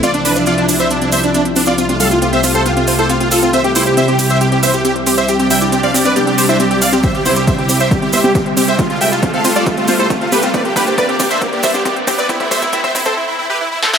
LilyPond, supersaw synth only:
\new Staff \with { instrumentName = "Supersaw synth" } { \time 4/4 \key c \major \tempo 4 = 137 <f' d''>16 d'16 <d' b'>16 d'16 <f' d''>16 d'16 d'16 <c'' e''>16 d'16 d'16 <c'' e''>16 d'16 d'16 r16 d'16 <f' d''>16 | f'16 f'16 <a' f''>16 f'16 f'16 <c'' e''>16 f'16 <a' c''>16 f'16 f'16 f'16 <a' c''>16 f'16 f'16 <f' a'>16 f'16 | <c'' e''>16 g'16 <e' c''>16 g'16 <c'' e''>16 g'16 g'16 <c'' e''>16 g'16 g'16 <c'' e''>16 g'16 g'16 r16 g'16 <c'' e''>16 | g'16 g'16 <e'' g''>16 g'16 g'16 <d'' f''>16 g'16 <b' d''>16 g'16 g'16 g'16 <c'' e''>16 g'16 g'16 <d'' f''>16 g'16 |
<c'' e''>16 g'16 <e' c''>16 g'16 <c'' e''>16 g'16 g'16 <c'' e''>16 g'16 g'16 <c'' e''>16 g'16 g'16 r16 g'16 <c'' e''>16 | f'16 f'16 <e'' g''>16 f'16 f'16 <a' f''>16 f'16 <f' d''>16 f'16 f'16 f'16 <a' c''>16 f'16 f'16 <g' b'>16 f'16 | <b' d''>16 g'16 <g' b'>16 g'16 <b' d''>16 g'16 g'16 <c'' e''>16 g'16 g'16 <c'' e''>16 g'16 g'16 r16 g'16 <b' d''>16 | e'16 e'16 <c'' e''>16 e'16 e'16 <c'' e''>16 e'16 <a' c''>16 e'16 e'16 e'16 <g' b'>16 e'16 e'16 <c' a'>16 e'16 | }